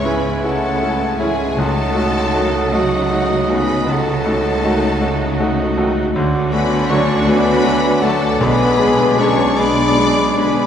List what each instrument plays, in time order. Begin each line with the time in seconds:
Already playing: double bass section C#2, grand piano G#2 G#3 C#4 E4, cello section C#3, bassoon E3, viola section C#4 E4, oboe C#5
0.03 trombone section E3 C#4, grand piano G#3 C#4 E4, french horn section B3, violin section B4 B5, flute G#5
0.42 grand piano G#3 C#4 E4, french horn section A3, violin section A4 A5, flute F#5
0.82 grand piano G#3 C#4 E4
1.19 trombone section E3 C#4, french horn section G#3, grand piano G#3 C#4 E4, violin section G#4 G#5, flute E5
1.57 double bass section C#2, grand piano C#2, timpani C#3, cello section C#3, bassoon F#3, french horn section A3, viola section D#4 F#4, violin section A4 A5, oboe D#5, flute F#5
1.95 grand piano A3 D#4 F#4
2.34 trombone section D#3 F#3, grand piano A3 D#4 F#4
2.72 french horn section F#3, grand piano A3 D#4 F#4, viola section D#4 F#4, violin section F#4 F#5, flute D#5
3.10 grand piano A3 D#4 F#4
3.49 trombone section D#3 F#3, grand piano A3 D#4 F#4, french horn section B3, violin section B4 B5, flute G#5
3.87 grand piano C#2, french horn section A3, viola section D#4 F#4, violin section A4 A5, flute F#5
4.25 grand piano A3 D#4 F#4
4.64 trombone section D#3 F#3, grand piano A3 D#4 F#4
5.01 grand piano A3 D#4 F#4
5.40 grand piano A3 D#4 F#4
5.77 trombone section D#3 F#3, grand piano A3 D#4 F#4
6.14 double bass section D2, grand piano D2, cello section D3, bassoon F#3, viola section D4 F#4, oboe D5
6.52 grand piano A3 D4 F#4, french horn section B3, violin section B4 B5, flute G#5
6.89 trombone section D3 F#3, grand piano A3 D4 F#4, french horn section C#4, violin section C#5 C#6, flute A5
7.26 grand piano A3 D4 F#4, french horn section B3, violin section B4 B5, flute G#5
7.64 grand piano A3 D4 F#4
8.02 trombone section D3 F#3, grand piano A3 D4 F#4, french horn section A3, violin section A4 A5, flute F#5
8.40 grand piano B1, double bass section B1, cello section B2, bassoon G#3, french horn section B3, viola section D4 G#4, violin section B4 B5, flute G#5
8.79 grand piano G#3 D4 G#4
9.18 trombone section D3 G#3, grand piano G#3 D4 G#4, french horn section C#4, violin section C#5 C#6, flute A5
9.59 grand piano G#3 D4 G#4, viola section D4 G#4, french horn section D4, violin section D5 D6, flute B5
9.98 grand piano G#3 D4 G#4
10.38 grand piano G#3 D4 G#4, trombone section G#3, french horn section B3, violin section B4 B5, flute G#5
10.42 trombone section D3